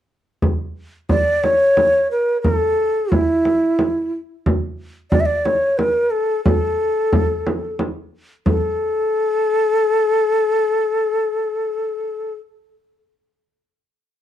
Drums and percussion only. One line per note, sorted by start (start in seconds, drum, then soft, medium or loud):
0.42 frame drum medium
1.09 frame drum medium
1.44 frame drum medium
1.77 frame drum medium
2.44 frame drum medium
3.12 frame drum medium
3.45 frame drum soft
3.79 frame drum medium
4.46 frame drum medium
5.12 frame drum medium
5.45 frame drum medium
5.79 frame drum medium
6.46 frame drum medium
7.13 frame drum medium
7.47 frame drum medium
7.79 frame drum medium
8.46 frame drum medium